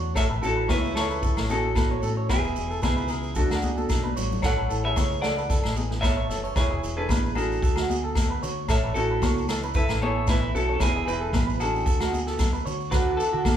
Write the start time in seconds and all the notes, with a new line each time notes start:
Already playing: E2 D3 A3 D4 F#4 C#5
0.15 A1 A2 A4 C#5 E5, kick, snare, muted conga, low agogo, shekere
0.20 A4
0.29 A1 B4
0.42 A1 C#4 E4 F#4 A4, muted conga, shekere
0.56 B4
0.68 C#2 E3 E4 B4 C#5, kick, snare, high conga, low agogo, shekere
0.73 E4
0.85 shekere
0.95 B3 E4 A4 C#5, snare, low agogo, shekere
1.10 C#4 B4, shekere
1.22 E4 A4, kick, muted conga, shekere
1.37 A1, snare, low agogo, shekere
1.49 E2 C#4 F#4 G#4 A4, high conga, shekere
1.64 A4
1.75 A3 B4, kick, snare, muted conga, high conga, low agogo, shekere
1.91 C#5
2.03 A2 C#4 A4, shekere
2.17 C#5
2.29 E1 E2 B3 E4 G#4 B4, kick, snare, muted conga, low agogo, shekere
2.44 E1 G#4, shekere
2.56 E1, muted conga, shekere
2.71 A4, shekere
2.82 C#2 B2 B3 E4 G#4 B4, kick, snare, high conga, low agogo, shekere
2.97 B4, shekere
3.08 C#3 G#4, low agogo, shekere
3.23 shekere
3.35 D2 D3 A3 D4 F#4 A4, kick, muted conga, shekere
3.50 D2 F#4, snare, low agogo, shekere
3.62 C#2 D4 G#4, high conga, shekere
3.77 A4, high conga, shekere
3.89 B1 A3, kick, snare, high conga, low agogo, shekere
4.04 B4, high conga
4.17 A1 F#4 C#5, low conga, shekere
4.32 low conga, shekere
4.42 A1 A2 A4 C#5 F#5, kick, snare, muted conga, low agogo, shekere
4.47 A4
4.57 A1 B4
4.69 A1 E4 A4, muted conga, shekere
4.84 G#4 B4 C#5 E5
4.96 C#2 E3 C#5, kick, snare, high conga, low agogo, shekere
5.12 shekere
5.22 A4 D5 F#5, snare, low agogo, shekere
5.27 A4
5.37 B4, shekere
5.50 E4 A4, kick, snare, muted conga, shekere
5.64 A1, snare, low agogo
5.76 E2 G#4, high conga, shekere
5.91 muted clean electric guitar stroke, snare
6.01 A3 A4 B4 C#5 E5, kick, snare, muted conga, high conga, low agogo, shekere
6.17 C#5
6.29 F#1 B3 A4, snare, shekere
6.44 C#4 C#5
6.56 E1 E2 E4 G#4 B4 C#5, kick, snare, muted conga, low agogo, shekere
6.71 E1 G#4
6.83 E1 E4, muted conga, shekere
6.97 D4 G#4 A4 B4
7.09 A1 G#3 B4, kick, snare, high conga, low agogo, shekere
7.24 B4, shekere
7.35 D4 E4 F#4 G#4 A4, low agogo, shekere
7.52 shekere
7.62 D2 D3 A4, kick, muted conga, shekere
7.76 D2 F#4, snare, low agogo, shekere
7.90 F#4 G#4, high conga, shekere
8.04 A4
8.15 A3, kick, snare, muted conga, high conga, low agogo, shekere
8.30 B4
8.43 D3 F#4 C#5, shekere
8.68 A1 A2 A4 C#5 E5, kick, snare, muted conga, low agogo, shekere
8.83 A1 B4
8.94 A1 C#4 E4 F#4 A4, muted conga, shekere
9.11 B4
9.22 C#2 E3 C#5, kick, snare, high conga, low agogo, shekere
9.38 shekere
9.48 B3 A4, snare, low agogo, shekere
9.63 C#4 B4, shekere
9.74 E4 A4 B4, kick, muted conga, shekere
9.89 A1, snare, low agogo, shekere
10.02 E2 E4 G#4 A4 C#5, high conga
10.17 A4
10.27 A3 E4 B4, kick, snare, muted conga, high conga, low agogo, shekere
10.43 muted clean electric guitar stroke
10.55 B1 C#4 F#4 A4, shekere
10.69 C#5
10.74 C#4 A4
10.80 E1 E2 E4 G#4 B4, kick, snare, muted conga, low agogo, shekere
10.84 B3
10.95 E1 G#4
11.06 E1 E4 G#4 B4, muted conga, shekere
11.10 E4
11.21 A4
11.33 A1 B4, kick, snare, high conga, low conga, low agogo, shekere
11.47 B4, shekere
11.60 C#3 D4 F#4 G#4 A4, low agogo, shekere
11.76 shekere
11.86 D2 A4, muted steel-string acoustic guitar stroke, kick, muted conga, shekere
12.00 D2 F#4, snare, low agogo, shekere
12.12 F#4 G#4, high conga, shekere
12.27 A4, snare, shekere
12.39 A3, kick, snare, muted conga, high conga, low conga, low agogo, shekere
12.53 B4, shekere
12.66 D3 F#4 C#5, shekere
12.81 shekere
12.90 D2 D3 D4 E4 F#4 A4 B4, kick, snare, muted conga, low agogo, shekere
13.17 F#4 A4, muted conga, shekere
13.33 D3 F#4
13.45 D3 A4, kick, snare, high conga, low agogo, shekere